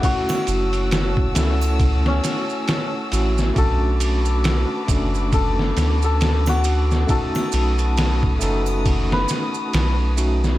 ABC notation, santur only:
X:1
M:4/4
L:1/16
Q:"Swing 16ths" 1/4=68
K:Bm
V:1 name="Santur"
F3 z6 C6 z | A3 z4 z A3 A2 F3 | A3 z6 B6 z |]